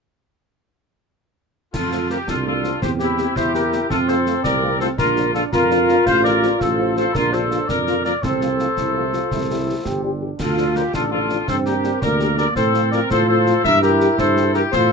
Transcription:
1.74 tuba F2, woodwind section F4, trumpet section A4, concert bass drum, snare, crash
1.91 french horn section A3 C4 F4, snare
2.10 french horn section A3 C4 F4, woodwind section G4, trumpet section A#4, snare
2.27 tuba C2, trombone section D4, woodwind section F4, trumpet section A4, concert bass drum, snare
2.45 french horn section A3 C4 F4, woodwind section F4, trumpet section A4
2.64 french horn section A3 C4 F4, snare
2.81 tuba E2, trombone section C4, woodwind section G4, trumpet section C5, concert bass drum, snare
3.00 french horn section A#3 C4 G4, woodwind section E4, trumpet section G4, snare
3.18 french horn section A#3 C4 G4, snare
3.35 tuba E2, trombone section E4, woodwind section G4, trumpet section C5, concert bass drum, snare
3.53 french horn section A#3 C4 G4, woodwind section G4, trumpet section A#4, snare
3.72 french horn section A#3 C4 G4, snare
3.90 tuba F2, trombone section C4, woodwind section F4, trumpet section A4, concert bass drum, snare
4.08 french horn section A3 C4 F4, woodwind section A4, trumpet section C5, snare
4.26 french horn section A3 C4 F4, snare
4.44 tuba C2, woodwind section A#4, trumpet section D5, concert bass drum, snare
4.62 french horn section A3 C4 F4
4.80 french horn section A3 C4 F4, woodwind section A4, trumpet section C5, snare
4.98 tuba A#1, trombone section D4, woodwind section F4, trumpet section A#4, concert bass drum, snare
5.16 french horn section F3 D4 F4, snare
5.34 french horn section F3 D4 F4, woodwind section F4, trumpet section A4, snare
5.52 tuba F2, trombone section F4, woodwind section F4, trumpet section A#4, concert bass drum, snare
5.70 french horn section F3 D4 F4, snare
5.89 french horn section F3 D4 F4, snare
6.06 tuba A1, woodwind section C5, trumpet section F5, concert bass drum, snare, crash
6.24 french horn section F3 C4 F4, woodwind section A#4, trumpet section D5, snare
6.42 french horn section F3 C4 F4, snare
6.60 tuba A1, woodwind section A4, trumpet section C5, concert bass drum, snare
6.78 french horn section F3 C4 F4
6.96 french horn section F3 C4 F4, woodwind section A4, trumpet section C5, snare
7.14 tuba A#1, trombone section D4, woodwind section F4, trumpet section A#4, concert bass drum, snare
7.32 french horn section F3 A#3 F4, woodwind section A4, trumpet section C5, snare
7.51 french horn section F3 A#3 F4, snare
7.68 tuba F2, woodwind section A#4, trumpet section D5, concert bass drum, snare
7.87 french horn section F3 A#3 F4, snare
8.04 french horn section F3 A#3 F4, woodwind section A#4, trumpet section D5, snare
8.22 tuba C2, trombone section C4, woodwind section A4, trumpet section C5, concert bass drum, snare
8.41 french horn section F3 A3 F4, snare
8.59 french horn section F3 A3 F4, snare
8.76 tuba C2, trombone section E4, concert bass drum, snare
8.96 french horn section F3 A3 F4
9.13 french horn section F3 A3 F4, trombone section F4, snare
9.31 tuba C2, trombone section E4, concert bass drum, snare
9.49 french horn section E3 G3 G4, trombone section E4
9.67 french horn section E3 G3 G4
9.84 tuba G1, trombone section G4, concert bass drum, snare
10.03 french horn section E3 G3 G4, trombone section D4
10.22 french horn section E3 G3 G4
10.39 tuba D2, trombone section F4, woodwind section F4, trumpet section A4, concert bass drum, snare, crash
10.58 french horn section F3 D4 F4, snare
10.76 french horn section F3 D4 F4, woodwind section G4, trumpet section A#4, snare
10.93 tuba A1, trombone section D4, woodwind section F4, trumpet section A4, concert bass drum, snare
11.11 french horn section F3 D4 F4, woodwind section F4, trumpet section A4
11.30 french horn section F3 D4 F4, snare
11.48 tuba G2, trombone section C4, woodwind section A4, trumpet section C5, concert bass drum, snare
11.66 french horn section A#3 D4 G4, woodwind section G4, trumpet section A#4, snare
11.84 french horn section A#3 D4 G4, snare
12.01 tuba D2, trombone section A#3, woodwind section A#4, trumpet section D5, concert bass drum, snare
12.20 french horn section A#3 D4 G4, snare
12.37 french horn section A#3 D4 G4, woodwind section A#4, trumpet section D5, snare
12.55 tuba A2, trombone section C4, woodwind section A4, trumpet section C5, concert bass drum, snare
12.74 french horn section F3 C4 F4, snare
12.92 french horn section F3 C4 F4, woodwind section A#4, trumpet section D5, snare
13.10 tuba A2, trombone section F4, woodwind section A4, trumpet section C5, concert bass drum, snare
13.28 french horn section F3 C4 F4, woodwind section A4, trumpet section C5
13.46 french horn section F3 C4 F4, snare
13.64 tuba G2, trombone section E4, woodwind section A#4, trumpet section E5, concert bass drum, snare
13.82 french horn section E3 E4 G4, woodwind section G4, trumpet section A#4, snare
14.00 french horn section E3 E4 G4, snare
14.18 tuba G2, woodwind section A4, trumpet section C5, concert bass drum, snare
14.37 french horn section E3 E4 G4, snare
14.54 french horn section E3 E4 G4, woodwind section G4, trumpet section A#4, snare
14.72 tuba A2, trombone section F4, woodwind section A4, trumpet section C5, concert bass drum, snare, crash

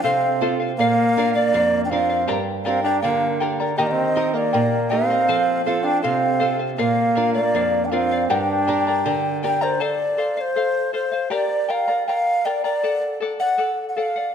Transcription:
Already playing: nylon-string guitar C4 F4 A4
0.03 nylon-string guitar C3, flugelhorn C4, charango A4 C5 F5, quena F5
0.41 nylon-string guitar C4 F4 A4, charango A4 C5 F5
0.60 charango C5 F5
0.78 nylon-string guitar A#2, flugelhorn A#3, charango A#4 D5 F5, quena F5
1.17 nylon-string guitar D4 F4 A#4, charango A#4 D5 F5
1.34 flugelhorn A#3, quena D5, charango D5 F5
1.54 nylon-string guitar F2, charango A#4 D5 F5
1.85 flugelhorn D4, quena G5
1.90 flugelhorn C4, nylon-string guitar D4 F4 A#4, charango A#4 D5 F5, quena F5
2.09 charango D5 F5
2.27 nylon-string guitar G2, charango G4 A#4 D5 G5 A#5
2.65 flugelhorn C4, nylon-string guitar D4 G4 A#4, charango A#4 D5 G5 A#5, quena F5
2.83 flugelhorn D4, charango A#4 D5 A#5, quena G5
3.01 nylon-string guitar D3, flugelhorn A#3, charango A#4 D5 G5 A#5, quena F5
3.40 nylon-string guitar D4 G4 A#4, charango A#4 D5 G5 A#5
3.60 charango A#4 D5 A#5
3.77 nylon-string guitar D#3, flugelhorn A#3, charango G4 A#4 D#5 G5 A#5, quena D#5
3.87 flugelhorn A#3, quena D5
3.91 flugelhorn C4, quena D#5
4.16 nylon-string guitar D#4 G4 A#4, charango A#4 D#5 G5 A#5
4.33 flugelhorn A#3, charango A#4 D#5 A#5, quena D5 D#5
4.53 nylon-string guitar A#2, charango A#4 G5 A#5
4.90 flugelhorn C4, nylon-string guitar D#4 G4 A#4, charango A#4 D#5 G5 A#5, quena F5
5.10 charango A#4 D#5 A#5
5.28 nylon-string guitar F3, charango A4 C5 F5
5.65 flugelhorn C4, nylon-string guitar C4 F4 A4, charango A4 C5 F5, quena F5
5.84 flugelhorn D4, charango C5 F5, quena G5
6.02 nylon-string guitar C3, flugelhorn C4, charango A4 C5 F5, quena F5
6.39 nylon-string guitar C4 F4 A4, charango A4 C5 F5
6.59 charango C5 F5
6.77 nylon-string guitar A#2, flugelhorn A#3, charango A#4 D5 F5, quena F5
7.15 nylon-string guitar D4 F4 A#4, charango A#4 D5 F5
7.34 flugelhorn A#3, quena D5, charango D5 F5
7.54 nylon-string guitar F2, charango A#4 D5 F5
7.85 flugelhorn D4, quena G5
7.90 flugelhorn C4, nylon-string guitar D4 F4 A#4, charango A#4 D5 F5, quena F5
8.11 charango D5 F5
8.28 nylon-string guitar G2, flugelhorn D4, charango G4 A#4 D5 G5 A#5, quena F#5
8.40 quena G5
8.67 nylon-string guitar D4 G4 A#4, charango A#4 D5 G5 A#5
8.87 charango A#4 D5 A#5
9.06 nylon-string guitar D3, charango A#4 D5 G5 A#5
9.43 nylon-string guitar D4 G4 A#4, charango A#4 D5 G5 A#5, quena G5
9.61 charango A#4 D5 A#5, quena C5
9.80 charango A4 C5 F5, quena D5
10.17 charango A4 C5 F5
10.37 charango C5 F5, quena C5 D5
10.56 charango A4 C5 F5
10.93 charango A4 C5 F5, quena C5
11.12 charango C5 F5
11.30 charango G4 A#4 D5 G5 A#5, quena D5
11.69 charango A#4 D5 G5 A#5, quena F5
11.88 charango A#4 D5 A#5
12.07 charango A#4 D5 G5 A#5, quena F5
12.45 charango A#4 D5 G5 A#5, quena D5
12.64 charango A#4 D5 A#5, quena D5
12.83 charango A4 D5 F#5
13.20 charango A4 D5 F#5
13.40 charango D5 F#5, quena F#5
13.58 charango A4 D5 F#5
13.89 quena F#5
13.96 charango A4 D5 F#5, quena F5
14.16 charango D5 F#5

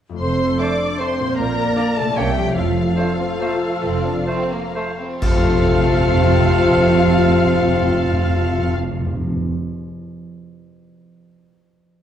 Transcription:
0.09 harp F2 A3
0.14 harp F4 C5
0.20 double bass section F1, cello section F2, french horn section C4, flute section A4, viola section C5, violin section C6
0.59 violin section A3 C4 D6, bassoon A3, french horn section D4, oboe C5, viola section D5
0.99 violin section A3 C4 C6, bassoon A3, french horn section C4, oboe C5, viola section C5, flute section C5
1.20 harp A#2
1.24 harp A#3
1.29 harp F4
1.33 french horn section A#3, harp D5
1.38 double bass section A#1, cello section A#2, viola section A#4, flute section D5, violin section A#5
1.76 bassoon A#3, violin section A#3 D4, oboe D5
1.96 harp C3, french horn section A3, viola section A4, violin section A5
2.04 harp A#3
2.08 harp E4
2.13 french horn section G3, harp C#5, oboe C#5
2.17 double bass section C2, cello section C3, violin section A#3 C#4 G5, bassoon A#3, viola section G4, flute section E5
2.39 harp F3
2.43 harp A3
2.47 harp F4
2.52 harp C5
2.56 double bass section F1, timpani F2, cello section F2, french horn section F3, viola section F4, flute section A4, violin section F5
2.97 bassoon A3, violin section D4, oboe C5
3.19 violin section C4
3.41 bassoon A3, violin section A#3, oboe C5
3.63 violin section A3
3.83 double bass section F1, cello section F2, violin section C4
4.05 violin section D4
4.27 bassoon A3, violin section C4, oboe C5
4.52 violin section A#3
4.75 violin section A3, bassoon A3, oboe C5
4.98 violin section C4
5.21 double bass section F1, timpani F2, cello section F2, bassoon C3, harp F3, violin section A3 C4 F5, french horn section F4, viola section F4, oboe A4, flute section F6, concert bass drum, crash
5.30 timpani F2, harp A3
5.36 timpani F2, harp F4
5.44 timpani F2, harp C5
5.50 timpani F2, harp F5
5.61 timpani F2
5.69 timpani F2
5.76 timpani F2
5.84 timpani F2
5.92 timpani F2
6.00 timpani F2
6.08 timpani F2
6.16 timpani F2
6.24 timpani F2
6.32 timpani F2
6.40 timpani F2
6.47 timpani F2
6.55 timpani F2
6.62 timpani F2
6.69 timpani F2
6.77 timpani F2
6.85 timpani F2
6.93 timpani F2
7.00 timpani F2
7.07 timpani F2
7.14 timpani F2
7.22 timpani F2
7.30 timpani F2
7.38 timpani F2
7.45 timpani F2
7.53 timpani F2
7.60 timpani F2
7.67 timpani F2
7.75 timpani F2
7.82 timpani F2
7.90 timpani F2
7.97 timpani F2
8.05 timpani F2
8.13 timpani F2
8.21 timpani F2
8.29 timpani F2
8.37 timpani F2
8.44 timpani F2
8.52 timpani F2
8.60 timpani F2
8.68 timpani F2
8.76 timpani F2
8.83 timpani F2
8.91 timpani F2
8.99 timpani F2
9.06 timpani F2
9.14 timpani F2
9.21 timpani F2
9.29 timpani F2
9.37 timpani F2

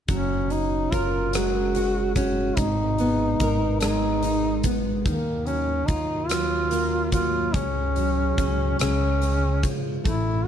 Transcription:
0.08 upright bass F#1, steel-string acoustic guitar F#3, duduk C#4, kick, closed hi-hat
0.50 steel-string acoustic guitar C#4, duduk D#4, closed hi-hat
0.92 upright bass F#1, duduk F4, steel-string acoustic guitar A#4, kick, closed hi-hat
1.33 steel-string acoustic guitar G#3, duduk F#4, cross-stick, closed hi-hat
1.75 steel-string acoustic guitar F#4, closed hi-hat
2.15 steel-string acoustic guitar C#4, duduk F#4, kick, closed hi-hat
2.57 upright bass G#1, steel-string acoustic guitar G#2, duduk D#4, kick, closed hi-hat
2.98 steel-string acoustic guitar B3, closed hi-hat
3.40 upright bass G#1, steel-string acoustic guitar A#4, kick, closed hi-hat
3.80 steel-string acoustic guitar G#3, duduk D#4, cross-stick, closed hi-hat
4.22 steel-string acoustic guitar D#4, closed hi-hat
4.63 steel-string acoustic guitar B3, kick, closed hi-hat
5.04 upright bass D#2, steel-string acoustic guitar D#3, duduk A#3, kick, closed hi-hat
5.46 steel-string acoustic guitar F#3, duduk C#4, closed hi-hat
5.86 upright bass D#2, duduk D#4, steel-string acoustic guitar F4, kick, closed hi-hat
6.28 steel-string acoustic guitar F#3, duduk F4, cross-stick, closed hi-hat
6.71 steel-string acoustic guitar A#3, closed hi-hat
7.12 steel-string acoustic guitar F#3, duduk F4, kick, closed hi-hat
7.54 upright bass C#2, steel-string acoustic guitar C#3, duduk C#4, kick, closed hi-hat
7.96 steel-string acoustic guitar F#3, closed hi-hat
8.38 upright bass C#2, steel-string acoustic guitar C#4, kick, closed hi-hat
8.79 upright bass C#2, steel-string acoustic guitar C#3, duduk C#4, cross-stick, closed hi-hat
9.21 steel-string acoustic guitar G#3, closed hi-hat
9.63 steel-string acoustic guitar F3, kick, closed hi-hat
10.04 upright bass A1, steel-string acoustic guitar A3, duduk E4, kick, closed hi-hat

